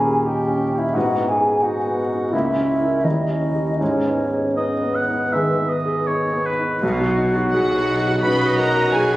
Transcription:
Already playing: grand piano D#2 A#2 C#4 D#4 G4, clarinet G#4, flute G#5
0.04 grand piano G4
0.25 grand piano D#4, clarinet G4, flute G5
0.48 grand piano C#4
0.72 grand piano D#4
0.77 clarinet E4, flute E5
0.94 grand piano G#2, french horn section B3 D#4, clarinet F#4, flute F#5
1.17 grand piano B3
1.28 clarinet G#4, flute G#5
1.39 grand piano G#4
1.62 grand piano D#4, clarinet F#4, flute F#5
1.87 grand piano B3
2.09 grand piano D#4
2.30 grand piano C#2, french horn section A#3 E4, clarinet E4, flute E5
2.56 grand piano C#4
2.80 grand piano E4 A#4
3.03 grand piano D#2, french horn section G3 E4, clarinet D#4, flute D#5
3.30 grand piano C#4
3.55 grand piano E4 G4
3.77 grand piano G#2, french horn section G#3 D#4, clarinet C#4, flute C#5
4.05 grand piano B3
4.31 grand piano G#4
4.56 clarinet B3, grand piano D#4, flute B4, oboe D#5
4.83 grand piano B3
4.96 oboe F#5
5.08 grand piano D#4
5.32 grand piano D#3, french horn section G#3 D#4, oboe E5
5.60 grand piano B3
5.70 oboe D#5
5.86 grand piano G#4
6.07 grand piano D#4, oboe C#5
6.33 grand piano B3
6.46 oboe B4
6.59 grand piano D#4
6.81 grand piano B1, double bass section B1, cello section B2, french horn section F#3 D#4, trumpet F#4
7.01 grand piano F#4
7.18 grand piano D#4
7.35 grand piano F#4
7.53 double bass section B1, cello section B2, violin section F#4 F#5, clarinet F#4, grand piano G#4, flute F#5
7.71 grand piano F#4
7.90 grand piano D#4
8.08 grand piano F#4
8.22 double bass section B1, grand piano F#2, cello section B2, clarinet B4, violin section B4 B5, viola section D#5, flute B5
8.42 grand piano F#4
8.57 grand piano D#4, violin section A#4 A#5, clarinet A#4, flute A#5
8.77 grand piano F#4
8.92 double bass section B1, cello section B2, violin section G#4 G#5, grand piano G#4, clarinet G#4, viola section B4, flute G#5
9.11 grand piano F#4

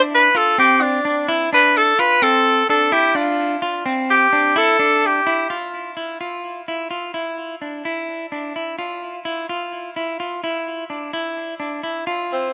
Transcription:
Already playing: clean electric guitar D4
0.15 tenor saxophone B4
0.35 clean electric guitar F4, tenor saxophone A4
0.58 clean electric guitar C4, tenor saxophone G4
0.82 tenor saxophone D4
1.05 clean electric guitar D4
1.28 clean electric guitar E4
1.53 clean electric guitar D4, tenor saxophone B4
1.77 tenor saxophone A4
1.99 clean electric guitar F4, tenor saxophone B4
2.22 clean electric guitar C4, tenor saxophone A4
2.69 clean electric guitar D4, tenor saxophone A4
2.92 clean electric guitar E4, tenor saxophone G4
3.15 clean electric guitar D4, tenor saxophone F4
3.62 clean electric guitar F4
3.86 clean electric guitar C4
4.10 tenor saxophone G4
4.33 clean electric guitar D4
4.56 clean electric guitar E4, tenor saxophone A4
4.79 clean electric guitar D4
5.06 tenor saxophone G4
5.27 clean electric guitar E4
5.50 clean electric guitar F4
5.97 clean electric guitar E4
6.21 clean electric guitar F4
6.68 clean electric guitar E4
6.91 clean electric guitar F4
7.14 clean electric guitar E4
7.62 clean electric guitar D4
7.85 clean electric guitar E4
8.32 clean electric guitar D4
8.56 clean electric guitar E4
8.79 clean electric guitar F4
9.25 clean electric guitar E4
9.49 clean electric guitar F4
9.96 clean electric guitar E4
10.20 clean electric guitar F4
10.44 clean electric guitar E4
10.90 clean electric guitar D4
11.13 clean electric guitar E4
11.60 clean electric guitar D4
11.83 clean electric guitar E4
12.07 clean electric guitar F4
12.33 tenor saxophone C4

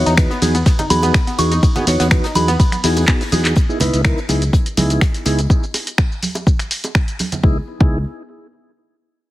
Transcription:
Already playing: tonewheel organ B3 D#4 F#4 C#5
0.06 fingered electric bass E2, synth arpeggio sound D#4, snare, closed hi-hat, shaker
0.17 tonewheel organ B3 D#4 F#4 B4, finger snap, kick, snare, closed hi-hat, ride, shaker
0.31 synth arpeggio sound B3, closed hi-hat, shaker
0.42 fingered electric bass E2, tonewheel organ B3 D#4 F#4 G#4, snare, closed hi-hat, open hi-hat, ride, high conga, shaker
0.55 synth arpeggio sound B3, closed hi-hat, shaker
0.66 kick, snare, closed hi-hat, ride, shaker
0.79 synth arpeggio sound D#4, closed hi-hat, high bongo, low conga, shaker
0.90 fingered electric bass E2, tonewheel organ B3 D#4 F#4 G#4, synth bell B5, closed hi-hat, open hi-hat, ride, high conga, shaker
1.03 synth arpeggio sound B3, closed hi-hat, high bongo, shaker
1.14 finger snap, kick, snare, closed hi-hat, ride, shaker
1.27 synth arpeggio sound B3, snare, closed hi-hat, shaker
1.38 fingered electric bass E2, tonewheel organ B3 D#4 F#4 G#4, synth bell C#6, snare, closed hi-hat, open hi-hat, ride, high bongo, shaker
1.52 synth arpeggio sound D#4, closed hi-hat, shaker
1.63 kick, closed hi-hat, ride, shaker
1.75 tonewheel organ B3 D#4 F#4 G#4, synth arpeggio sound B3, snare, closed hi-hat, low conga, shaker
1.87 fingered electric bass E2, tonewheel organ B3 D#4 F#4 C#5, snare, closed hi-hat, open hi-hat, ride, high bongo, shaker
2.00 fingered electric bass E2, synth arpeggio sound B3, snare, closed hi-hat, shaker
2.11 tonewheel organ B3 D#4 F#4 B4, finger snap, kick, snare, closed hi-hat, ride, shaker
2.24 synth arpeggio sound D#4, snare, closed hi-hat, shaker
2.35 fingered electric bass E2, tonewheel organ B3 D#4 F#4 G#4, synth bell B5, snare, closed hi-hat, open hi-hat, ride, high conga, shaker
2.48 synth arpeggio sound B3, snare, closed hi-hat, high bongo, shaker
2.60 kick, closed hi-hat, ride, shaker
2.72 synth arpeggio sound B3, finger snap, closed hi-hat, high conga, shaker
2.84 fingered electric bass E2, tonewheel organ B3 D#4 F#4 G#4, synth arpeggio sound E4, snare, open hi-hat, ride, shaker
2.97 closed hi-hat, high bongo, shaker
3.08 tonewheel organ B3 D#4 F#4 G#4, synth arpeggio sound B3, finger snap, kick, snare, clap, ride, shaker
3.21 snare, closed hi-hat, open hi-hat, shaker
3.32 fingered electric bass E2, tonewheel organ B3 D#4 F#4 G#4, synth arpeggio sound G#4, open hi-hat, ride, high bongo, high conga, shaker
3.45 snare, clap, closed hi-hat, shaker
3.56 kick, closed hi-hat, shaker
3.69 tonewheel organ B3 D#4 E4 G#4, shaker
3.80 fingered electric bass C#2, tonewheel organ B3 D#4 E4 B4, closed hi-hat, open hi-hat, low conga, shaker
3.93 fingered electric bass C#2, snare, closed hi-hat, shaker
4.04 tonewheel organ B3 D#4 E4 A#4, finger snap, kick, snare, closed hi-hat, shaker
4.18 closed hi-hat, shaker
4.29 fingered electric bass C#2, tonewheel organ B3 D#4 E4 G#4, snare, closed hi-hat, open hi-hat, high conga, shaker
4.42 closed hi-hat, shaker
4.53 kick, closed hi-hat, shaker
4.66 closed hi-hat, shaker
4.77 fingered electric bass C#2, tonewheel organ B3 D#4 E4 G#4, closed hi-hat, open hi-hat, high conga, shaker
4.90 closed hi-hat, high bongo, shaker
5.01 finger snap, kick, snare, closed hi-hat, shaker
5.14 snare, closed hi-hat, shaker
5.25 fingered electric bass C#2, tonewheel organ B3 D#4 E4 G#4, snare, closed hi-hat, open hi-hat, high bongo, shaker
5.39 closed hi-hat, shaker
5.50 kick, shaker
5.64 shaker
5.74 open hi-hat, high bongo, shaker
5.87 closed hi-hat, shaker
5.98 finger snap, kick, shaker
6.12 shaker
6.23 open hi-hat, high conga, shaker
6.35 closed hi-hat, high bongo, shaker
6.47 kick, shaker
6.59 finger snap, closed hi-hat, shaker
6.71 open hi-hat, shaker
6.84 closed hi-hat, high bongo, shaker
6.95 finger snap, kick, shaker
7.08 closed hi-hat, shaker
7.19 open hi-hat, high bongo, high conga, shaker
7.32 closed hi-hat, low conga, shaker
7.43 fingered electric bass C#2, tonewheel organ B3 D#4 E4 G#4, kick
7.80 fingered electric bass C#2, tonewheel organ B3 D#4 E4 G#4, kick

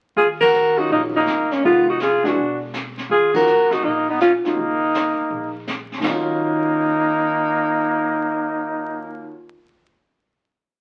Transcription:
0.16 upright bass D#2, trumpet F4, alto saxophone G#4, brush sweep, kick
0.41 trumpet F#4, alto saxophone A#4, kick, ride
0.53 hi-hat pedal
0.77 grand piano D#3 F#3 C#4 F4, trumpet D#4, alto saxophone F#4
0.90 upright bass A#1, trumpet A#3, alto saxophone D#4, brush sweep, kick
1.16 trumpet A#3, alto saxophone D#4
1.26 upright bass F#1, snare, hi-hat pedal
1.51 trumpet A#3, alto saxophone C#4, snare
1.63 upright bass F1, grand piano D#3 G#3 B3 F4, trumpet B3, alto saxophone F4, brush sweep, kick
1.88 trumpet D#4, alto saxophone F#4
2.00 trumpet F4, alto saxophone G#4, snare, hi-hat pedal
2.24 grand piano E3 G#3 D4 F#4, trumpet D4, snare
2.28 alto saxophone F#4
2.36 upright bass E1, brush sweep, kick
2.74 snare, hi-hat pedal
2.98 snare
3.09 upright bass D#2, trumpet F4, alto saxophone G#4, brush sweep, kick
3.34 grand piano D#3 F#3 C#4 F4, trumpet F#4, alto saxophone A#4, kick, ride
3.47 hi-hat pedal
3.58 upright bass F2
3.71 upright bass C#2, trumpet D#4, alto saxophone F#4, snare
3.83 upright bass A#1, trumpet A#3, alto saxophone D#4, brush sweep, kick
4.09 trumpet B3, alto saxophone D#4
4.20 trumpet C#4, alto saxophone F4, snare, hi-hat pedal
4.44 grand piano D#3 F#3 C#4 F4, trumpet A#3, alto saxophone D#4, muted upright bass stroke, snare
4.57 upright bass F#1, brush sweep, kick
4.94 snare, hi-hat pedal
5.17 muted upright bass stroke
5.30 upright bass A#1, brush sweep, kick
5.67 snare, hi-hat pedal
5.92 snare
5.98 grand piano D#2 D#3
6.03 upright bass D#2, grand piano F#3 C#4, trumpet A#3, alto saxophone D#4, snare, floor tom, splash
6.10 grand piano F4

